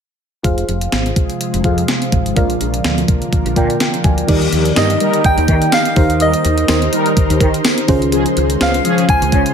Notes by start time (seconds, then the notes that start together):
0.43 F1 C3 F3 G#3 F4 G#4 C5 F5, kick, closed hi-hat
0.58 closed hi-hat
0.68 F1, closed hi-hat
0.81 closed hi-hat
0.92 G#1, snare, closed hi-hat
1.06 closed hi-hat
1.16 kick, closed hi-hat
1.30 closed hi-hat
1.41 closed hi-hat
1.54 F1, closed hi-hat
1.64 F2 F4 G#4 C5 F5, kick, closed hi-hat
1.78 closed hi-hat
1.88 snare, closed hi-hat
2.02 closed hi-hat
2.12 G#1, kick, closed hi-hat
2.26 closed hi-hat
2.36 A#1 A#2 D3 A#3 F4 A#4 D5 F5, kick, closed hi-hat
2.50 closed hi-hat
2.61 A#1, closed hi-hat
2.74 closed hi-hat
2.84 D2, snare, closed hi-hat
2.98 closed hi-hat
3.08 kick, closed hi-hat
3.22 closed hi-hat
3.33 kick, closed hi-hat
3.45 A#1, closed hi-hat
3.56 A#2 F4 A#4 D5 F5 G5, kick, closed hi-hat
3.70 closed hi-hat
3.80 G5, snare, closed hi-hat
3.94 closed hi-hat
4.04 D2 G#5, kick, closed hi-hat
4.18 closed hi-hat
4.27 D#2 D#3 G3 A#3 D#4 G4 A#4 D5, kick, closed hi-hat, crash
4.42 closed hi-hat
4.52 D#2, closed hi-hat
4.65 closed hi-hat
4.76 G2 D#4 G4 A#4 D#5 D#6, snare, closed hi-hat, tambourine
4.90 closed hi-hat
5.00 G3 D#4 A#4, closed hi-hat
5.13 closed hi-hat
5.24 G5 G6, kick, closed hi-hat
5.37 D#2, closed hi-hat
5.48 D#3, kick, closed hi-hat
5.62 closed hi-hat
5.72 F5 F6, snare, closed hi-hat, tambourine
5.85 closed hi-hat
5.96 D#2 D#3 D#4 G4 A#4 C5, kick, open hi-hat
6.10 closed hi-hat
6.20 G3 D#4 A#4 D#5 D#6, closed hi-hat
6.34 closed hi-hat
6.45 D#2, closed hi-hat
6.58 closed hi-hat
6.68 D#2 D#4 G4 A#4 C5, snare, closed hi-hat, tambourine
6.82 closed hi-hat
6.93 G3 D#4 A#4, closed hi-hat
7.06 closed hi-hat
7.17 kick, closed hi-hat
7.30 D#2, closed hi-hat
7.40 D#3, kick, closed hi-hat
7.54 closed hi-hat
7.65 snare, closed hi-hat, tambourine
7.78 closed hi-hat
7.88 C#2 C#3 G#3 C#4 F4 G#4 C5, kick, open hi-hat
8.02 closed hi-hat
8.12 F3 C#4 G#4, closed hi-hat
8.26 closed hi-hat
8.37 C#2, closed hi-hat
8.50 closed hi-hat
8.60 C#2 C#4 F4 G#4 C5 F5 F6, snare, closed hi-hat, tambourine
8.74 closed hi-hat
8.84 F3 C#4 G#4, closed hi-hat
8.98 closed hi-hat
9.09 G#5 G#6, kick, closed hi-hat
9.22 C#2, closed hi-hat
9.32 C#3, kick, closed hi-hat
9.46 closed hi-hat